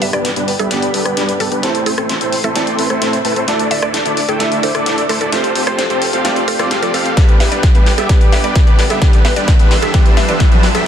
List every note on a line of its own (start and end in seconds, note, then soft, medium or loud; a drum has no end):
0.00 0.11 G1 medium
0.00 0.68 G3 medium
0.00 0.10 G3 medium
0.00 0.68 B3 medium
0.00 0.10 B3 medium
0.00 0.68 D4 medium
0.00 0.10 D4 medium
0.00 0.69 G4 medium
0.00 1.61 G4 medium
0.00 0.10 G4 medium
0.00 1.61 B4 medium
0.00 0.10 B4 loud
0.00 1.61 D5 medium
0.00 0.11 E5 medium
0.00 1.61 B5 medium
0.00 open hi-hat loud
0.13 0.34 G1 medium
0.13 0.29 G3 medium
0.13 0.29 B3 medium
0.13 0.29 D4 medium
0.13 0.29 G4 medium
0.13 0.29 B4 loud
0.13 0.25 D5 medium
0.13 cross-stick medium
0.13 closed hi-hat soft
0.25 snare soft
0.25 closed hi-hat medium
0.36 0.57 G1 medium
0.36 0.52 G3 medium
0.36 0.52 B3 medium
0.36 0.52 D4 medium
0.36 0.52 G4 medium
0.36 0.52 B4 medium
0.36 closed hi-hat soft
0.48 open hi-hat loud
0.59 0.69 G1 medium
0.59 0.69 G3 medium
0.59 0.69 B3 medium
0.59 0.69 D4 medium
0.59 0.69 G4 medium
0.59 0.72 A4 medium
0.59 0.69 E5 loud
0.59 0.69 E5 medium
0.59 closed hi-hat soft
0.70 0.92 G1 medium
0.70 1.60 G3 loud
0.70 0.91 G3 medium
0.70 1.60 B3 medium
0.70 0.91 B3 medium
0.70 0.91 D4 medium
0.70 1.61 D4 medium
0.70 0.91 G4 medium
0.70 1.61 G4 loud
0.70 0.91 D5 loud
0.70 snare soft
0.70 closed hi-hat medium
0.82 closed hi-hat soft
0.94 1.03 G1 medium
0.94 1.03 G3 medium
0.94 1.03 B3 medium
0.94 1.03 D4 medium
0.94 1.03 G4 medium
0.94 1.03 A4 medium
0.94 open hi-hat loud
1.05 1.15 G1 medium
1.05 1.15 G3 medium
1.05 1.15 B3 medium
1.05 1.15 D4 medium
1.05 1.15 G4 medium
1.05 1.15 B4 loud
1.05 cross-stick medium
1.05 closed hi-hat soft
1.17 1.38 G2 loud
1.17 1.33 G3 medium
1.17 1.33 B3 medium
1.17 1.33 D4 medium
1.17 1.33 G4 medium
1.17 1.33 B4 medium
1.17 1.33 B4 loud
1.17 snare soft
1.17 closed hi-hat medium
1.29 closed hi-hat soft
1.40 1.49 G2 medium
1.40 1.49 G3 medium
1.40 1.49 B3 medium
1.40 1.49 D4 medium
1.40 1.49 G4 medium
1.40 1.49 A4 loud
1.40 1.52 A4 medium
1.40 1.49 A4 medium
1.40 open hi-hat medium
1.52 1.61 G2 loud
1.52 1.60 G3 medium
1.52 1.60 B3 medium
1.52 1.60 D4 medium
1.52 1.60 G4 medium
1.52 1.60 B4 medium
1.52 closed hi-hat soft
1.62 1.84 A1 loud
1.62 2.52 A3 medium
1.62 1.84 A3 medium
1.62 2.53 C4 medium
1.62 1.84 C4 medium
1.62 1.84 E4 medium
1.62 2.53 E4 medium
1.62 3.46 A4 medium
1.62 1.84 A4 medium
1.62 2.53 A4 medium
1.62 3.46 C5 medium
1.62 1.83 C5 loud
1.62 1.84 C5 medium
1.62 5.29 E5 medium
1.62 3.46 C6 medium
1.62 snare soft
1.62 closed hi-hat medium
1.75 closed hi-hat soft
1.86 1.95 A1 medium
1.86 1.95 A3 medium
1.86 1.95 C4 medium
1.86 1.95 E4 medium
1.86 1.96 A4 medium
1.86 1.95 A4 medium
1.86 1.95 C5 loud
1.86 1.95 C5 medium
1.86 open hi-hat loud
1.98 2.19 A1 loud
1.98 2.14 A3 medium
1.98 2.14 C4 medium
1.98 2.14 E4 medium
1.98 2.10 A4 medium
1.98 2.14 A4 medium
1.98 2.14 C5 loud
1.98 cross-stick medium
1.98 closed hi-hat soft
2.09 snare soft
2.09 closed hi-hat medium
2.21 2.42 A1 medium
2.21 2.37 A3 medium
2.21 2.37 C4 medium
2.21 2.37 E4 medium
2.21 2.37 A4 medium
2.21 2.37 C5 medium
2.21 closed hi-hat soft
2.32 open hi-hat loud
2.44 2.53 A1 medium
2.44 2.54 A3 medium
2.44 2.54 C4 medium
2.44 2.54 E4 medium
2.44 2.54 A4 medium
2.44 2.90 A4 medium
2.44 2.54 E5 loud
2.44 closed hi-hat soft
2.54 2.76 A1 medium
2.54 3.44 A3 loud
2.54 2.76 A3 medium
2.54 3.45 C4 medium
2.54 2.76 C4 medium
2.54 2.76 E4 medium
2.54 3.45 E4 medium
2.54 2.76 A4 medium
2.54 3.46 A4 loud
2.54 2.76 D5 loud
2.54 snare medium
2.54 closed hi-hat medium
2.67 closed hi-hat soft
2.79 2.88 A1 medium
2.79 2.87 A3 medium
2.79 2.87 C4 medium
2.79 2.87 E4 medium
2.79 2.87 A4 medium
2.79 2.87 B4 medium
2.79 open hi-hat loud
2.90 2.99 A1 medium
2.90 3.00 A3 loud
2.90 3.00 C4 medium
2.90 3.00 E4 medium
2.90 3.00 A4 medium
2.90 3.00 C5 loud
2.90 cross-stick medium
2.90 closed hi-hat soft
3.02 3.22 A2 loud
3.02 3.18 A3 medium
3.02 3.18 C4 medium
3.02 3.18 E4 medium
3.02 3.18 A4 medium
3.02 3.18 C5 medium
3.02 3.18 C5 loud
3.02 snare medium
3.02 closed hi-hat medium
3.13 closed hi-hat soft
3.25 3.34 A2 medium
3.25 3.34 A3 medium
3.25 3.34 C4 medium
3.25 3.34 E4 medium
3.25 3.34 A4 medium
3.25 3.34 B4 loud
3.25 open hi-hat loud
3.36 3.45 A2 medium
3.36 3.45 A3 medium
3.36 3.45 C4 medium
3.36 3.45 E4 medium
3.36 3.45 A4 medium
3.36 3.45 C5 medium
3.36 closed hi-hat soft
3.47 3.69 D2 loud
3.47 4.37 A3 medium
3.47 3.68 A3 medium
3.47 4.37 D4 medium
3.47 3.68 D4 medium
3.47 3.68 E4 medium
3.47 4.38 E4 medium
3.47 7.13 A4 medium
3.47 3.68 A4 medium
3.47 4.38 A4 medium
3.47 3.68 D5 loud
3.47 5.31 D5 medium
3.47 3.68 D5 loud
3.47 5.31 D6 medium
3.47 snare medium
3.47 closed hi-hat medium
3.59 closed hi-hat soft
3.71 3.80 D2 loud
3.71 3.80 A3 medium
3.71 3.80 D4 medium
3.71 3.80 E4 medium
3.71 3.80 A4 medium
3.71 3.80 D5 loud
3.71 3.80 E5 medium
3.71 open hi-hat loud
3.82 4.03 D2 medium
3.82 3.98 A3 medium
3.82 3.98 D4 medium
3.82 3.98 E4 medium
3.82 3.98 A4 medium
3.82 3.95 D5 medium
3.82 3.98 D5 loud
3.82 cross-stick medium
3.82 closed hi-hat soft
3.94 snare medium
3.94 closed hi-hat medium
4.05 4.26 D2 medium
4.05 4.21 A3 medium
4.05 4.21 D4 medium
4.05 4.21 E4 medium
4.05 4.21 A4 medium
4.05 4.21 D5 medium
4.05 closed hi-hat soft
4.17 open hi-hat loud
4.29 4.38 D2 medium
4.29 4.38 A3 medium
4.29 4.38 D4 medium
4.29 4.38 E4 medium
4.29 4.41 A4 medium
4.29 4.38 A4 medium
4.29 4.38 G5 medium
4.29 closed hi-hat soft
4.39 4.61 D2 loud
4.39 5.29 A3 loud
4.39 4.60 A3 medium
4.39 5.29 D4 medium
4.39 4.60 D4 medium
4.39 4.60 E4 medium
4.39 5.30 E4 medium
4.39 4.60 A4 medium
4.39 5.30 A4 loud
4.39 4.60 E5 loud
4.39 snare medium
4.39 closed hi-hat medium
4.52 closed hi-hat soft
4.63 4.72 D2 medium
4.63 4.72 A3 medium
4.63 4.72 D4 medium
4.63 4.72 E4 medium
4.63 4.71 A4 medium
4.63 4.72 A4 medium
4.63 4.72 C5 medium
4.63 4.72 C5 loud
4.63 open hi-hat loud
4.75 4.84 D2 medium
4.75 4.85 A3 medium
4.75 4.85 D4 medium
4.75 4.85 E4 medium
4.75 4.82 A4 medium
4.75 4.85 A4 medium
4.75 4.85 D5 loud
4.75 cross-stick medium
4.75 closed hi-hat soft
4.86 5.07 D2 loud
4.86 5.02 A3 medium
4.86 5.02 D4 medium
4.86 5.02 E4 medium
4.86 5.02 A4 medium
4.86 5.02 D5 medium
4.86 5.02 D5 loud
4.86 snare medium
4.86 closed hi-hat medium
4.98 closed hi-hat soft
5.09 5.19 D2 medium
5.09 5.18 A3 medium
5.09 5.18 D4 medium
5.09 5.18 E4 medium
5.09 5.17 A4 medium
5.09 5.18 A4 medium
5.09 5.18 C5 loud
5.09 open hi-hat loud
5.21 5.30 D2 medium
5.21 5.30 A3 medium
5.21 5.30 D4 medium
5.21 5.30 E4 medium
5.21 5.28 A4 medium
5.21 5.30 A4 medium
5.21 5.30 D5 loud
5.21 5.30 D5 medium
5.21 closed hi-hat soft
5.31 5.53 F1 loud
5.31 6.21 A3 medium
5.31 6.22 C4 medium
5.31 5.53 C4 medium
5.31 5.53 F4 medium
5.31 6.22 F4 medium
5.31 5.53 G4 medium
5.31 6.23 G4 medium
5.31 5.53 A4 medium
5.31 5.53 C5 loud
5.31 5.53 C5 medium
5.31 7.15 F5 medium
5.31 7.15 G5 medium
5.31 7.15 C6 medium
5.31 snare medium
5.31 closed hi-hat medium
5.44 closed hi-hat soft
5.55 5.65 F1 medium
5.55 5.64 C4 medium
5.55 5.64 F4 medium
5.55 5.64 G4 medium
5.55 5.64 A4 medium
5.55 5.64 C5 loud
5.55 open hi-hat loud
5.67 5.88 F1 medium
5.67 5.83 C4 medium
5.67 5.83 F4 medium
5.67 5.83 G4 medium
5.67 5.83 A4 medium
5.67 5.74 C5 medium
5.67 5.83 C5 loud
5.67 cross-stick medium
5.67 closed hi-hat soft
5.79 5.86 C5 medium
5.79 snare medium
5.79 closed hi-hat medium
5.90 6.11 F1 medium
5.90 6.06 C4 medium
5.90 6.06 F4 medium
5.90 6.06 G4 medium
5.90 6.06 A4 medium
5.90 6.06 C5 medium
5.90 closed hi-hat soft
6.02 open hi-hat loud
6.13 6.22 F1 medium
6.13 6.23 C4 medium
6.13 6.23 F4 medium
6.13 6.23 G4 medium
6.13 6.23 A4 medium
6.13 6.23 F5 loud
6.13 6.23 F5 medium
6.13 closed hi-hat soft
6.24 6.57 F1 medium
6.24 6.57 A3 loud
6.24 6.57 C4 medium
6.24 6.45 C4 medium
6.24 6.45 F4 medium
6.24 6.57 F4 medium
6.24 6.45 G4 medium
6.24 6.57 G4 loud
6.24 6.45 A4 medium
6.24 6.45 D5 loud
6.24 snare medium
6.24 closed hi-hat medium
6.36 closed hi-hat soft
6.48 6.57 A4 medium
6.48 open hi-hat loud
6.59 6.69 F1 medium
6.59 6.68 A3 medium
6.59 6.68 C4 medium
6.59 6.69 C4 loud
6.59 6.69 F4 medium
6.59 6.68 F4 medium
6.59 6.69 G4 medium
6.59 6.68 G4 medium
6.59 6.69 A4 medium
6.59 6.72 A4 medium
6.59 6.69 D5 loud
6.59 cross-stick medium
6.59 closed hi-hat soft
6.70 6.80 F1 loud
6.70 7.14 A3 medium
6.70 7.14 C4 medium
6.70 6.81 C4 loud
6.70 6.81 F4 medium
6.70 7.14 F4 medium
6.70 6.81 G4 medium
6.70 7.15 G4 loud
6.70 6.81 A4 medium
6.70 6.81 F5 loud
6.70 snare medium
6.70 closed hi-hat medium
6.82 6.92 F2 loud
6.82 6.91 C4 medium
6.82 6.91 F4 medium
6.82 6.91 G4 medium
6.82 6.91 A4 medium
6.82 6.90 A4 medium
6.82 6.91 D5 loud
6.82 6.91 D5 medium
6.82 closed hi-hat soft
6.94 7.15 F2 loud
6.94 7.14 C4 loud
6.94 7.14 F4 medium
6.94 7.14 G4 medium
6.94 7.01 A4 medium
6.94 7.14 A4 medium
6.94 7.14 F5 loud
6.94 open hi-hat loud
7.06 closed hi-hat soft
7.16 7.38 G1 loud
7.16 8.06 G3 medium
7.16 7.37 G3 medium
7.16 8.06 B3 medium
7.16 7.37 D4 medium
7.16 8.07 D4 medium
7.16 8.07 G4 medium
7.16 9.00 B4 medium
7.16 7.37 B4 medium
7.16 9.00 D5 medium
7.16 9.00 G5 medium
7.16 9.00 D6 medium
7.16 kick loud
7.16 snare medium
7.16 closed hi-hat medium
7.16 riser medium
7.29 closed hi-hat soft
7.40 7.49 G1 medium
7.40 7.49 G3 medium
7.40 7.49 B3 medium
7.40 7.49 D4 medium
7.40 7.49 G4 medium
7.40 7.49 B4 loud
7.40 7.49 B4 medium
7.40 7.49 E5 medium
7.40 snare medium
7.40 open hi-hat loud
7.52 7.72 G1 medium
7.52 7.68 G3 medium
7.52 7.68 B3 medium
7.52 7.68 D4 medium
7.52 7.68 G4 medium
7.52 7.68 B4 medium
7.52 7.68 B4 loud
7.52 7.64 D5 medium
7.52 closed hi-hat soft
7.63 kick loud
7.63 snare medium
7.63 closed hi-hat medium
7.75 7.95 G1 medium
7.75 7.91 G3 medium
7.75 7.91 B3 medium
7.75 7.91 D4 medium
7.75 7.91 G4 medium
7.75 7.91 B4 medium
7.75 closed hi-hat soft
7.86 snare medium
7.86 open hi-hat loud
7.98 8.07 G1 medium
7.98 8.07 G3 medium
7.98 8.08 B3 medium
7.98 8.08 D4 medium
7.98 8.07 G4 medium
7.98 8.08 A4 medium
7.98 8.07 E5 medium
7.98 8.08 E5 medium
7.98 closed hi-hat soft
8.08 8.30 G1 loud
8.08 8.98 G3 medium
8.08 8.30 G3 medium
8.08 8.99 B3 medium
8.08 8.30 B3 medium
8.08 8.30 D4 medium
8.08 8.99 D4 medium
8.08 8.30 G4 medium
8.08 8.99 G4 medium
8.08 8.30 B4 medium
8.08 kick loud
8.08 snare medium
8.08 closed hi-hat medium
8.21 closed hi-hat soft
8.32 8.42 G1 medium
8.32 8.41 G3 medium
8.32 8.41 B3 medium
8.32 8.41 D4 medium
8.32 8.41 G4 medium
8.32 8.41 B4 loud
8.32 8.41 B4 medium
8.32 8.42 E5 medium
8.32 snare medium
8.32 open hi-hat loud
8.44 8.65 G1 medium
8.44 8.60 G3 medium
8.44 8.60 B3 medium
8.44 8.60 D4 medium
8.44 8.60 G4 medium
8.44 8.60 B4 medium
8.44 8.56 D5 medium
8.44 closed hi-hat soft
8.55 kick loud
8.55 snare medium
8.55 closed hi-hat medium
8.67 8.88 G2 medium
8.67 8.83 G3 medium
8.67 8.83 B3 medium
8.67 8.83 D4 medium
8.67 8.83 G4 medium
8.67 8.83 B4 medium
8.67 closed hi-hat soft
8.79 snare medium
8.79 open hi-hat loud
8.90 8.99 G1 loud
8.90 9.00 G3 medium
8.90 9.00 B3 medium
8.90 9.00 D4 medium
8.90 9.00 G4 medium
8.90 9.00 A4 medium
8.90 9.00 E5 medium
8.90 closed hi-hat soft
9.00 9.22 A1 medium
9.00 9.91 G3 medium
9.00 9.91 B3 medium
9.00 9.22 B3 medium
9.00 9.22 D4 medium
9.00 9.91 D4 medium
9.00 9.22 G4 medium
9.00 9.92 G4 medium
9.00 9.22 B4 medium
9.00 9.22 B4 loud
9.00 10.87 E5 medium
9.00 10.87 A5 medium
9.00 10.84 C6 medium
9.00 10.87 E6 medium
9.00 kick loud
9.00 snare medium
9.00 closed hi-hat medium
9.13 closed hi-hat soft
9.25 9.34 A1 loud
9.25 9.34 G3 medium
9.25 9.34 B3 medium
9.25 9.34 D4 medium
9.25 9.34 G4 medium
9.25 9.33 B4 medium
9.25 9.34 B4 loud
9.25 9.34 E5 medium
9.25 snare medium
9.25 open hi-hat loud
9.36 9.57 A1 medium
9.36 9.52 G3 medium
9.36 9.52 B3 medium
9.36 9.52 D4 medium
9.36 9.52 G4 medium
9.36 9.52 B4 loud
9.36 9.48 D5 medium
9.36 closed hi-hat soft
9.48 kick loud
9.48 snare medium
9.48 closed hi-hat medium
9.59 9.80 A1 medium
9.59 9.75 G3 medium
9.59 9.75 B3 medium
9.59 9.75 D4 medium
9.59 9.75 G4 medium
9.59 9.75 B4 medium
9.59 closed hi-hat soft
9.71 snare medium
9.71 open hi-hat loud
9.82 9.92 A1 medium
9.82 9.92 G3 medium
9.82 9.92 B3 medium
9.82 9.92 D4 medium
9.82 9.92 G4 medium
9.82 9.92 A4 medium
9.82 9.92 E5 medium
9.82 closed hi-hat soft
9.93 10.15 A1 loud
9.93 10.83 G3 medium
9.93 10.14 G3 medium
9.93 10.83 B3 medium
9.93 10.14 B3 medium
9.93 10.14 D4 medium
9.93 10.84 D4 medium
9.93 10.14 G4 medium
9.93 10.84 G4 loud
9.93 10.14 B4 medium
9.93 kick loud
9.93 snare medium
9.93 closed hi-hat medium
10.06 closed hi-hat soft
10.17 10.26 A1 loud
10.17 10.26 G3 medium
10.17 10.26 B3 medium
10.17 10.26 D4 medium
10.17 10.26 G4 medium
10.17 10.26 B4 loud
10.17 10.26 B4 medium
10.17 10.26 E5 medium
10.17 snare medium
10.17 open hi-hat loud
10.29 10.49 A1 loud
10.29 10.44 G3 medium
10.29 10.44 B3 medium
10.29 10.44 D4 medium
10.29 10.44 G4 medium
10.29 10.44 B4 medium
10.29 10.41 D5 medium
10.29 closed hi-hat soft
10.40 kick loud
10.40 snare medium
10.40 closed hi-hat medium
10.52 10.72 A1 loud
10.52 10.68 G3 medium
10.52 10.68 B3 medium
10.52 10.68 D4 medium
10.52 10.68 G4 medium
10.52 10.67 B4 medium
10.52 10.68 B4 medium
10.52 closed hi-hat soft
10.63 snare medium
10.63 open hi-hat loud
10.75 10.84 D2 loud
10.75 10.84 G3 medium
10.75 10.84 B3 medium
10.75 10.84 D4 medium
10.75 10.84 G4 medium
10.75 10.84 A4 medium
10.75 10.84 E5 medium
10.75 10.84 E5 loud
10.75 closed hi-hat soft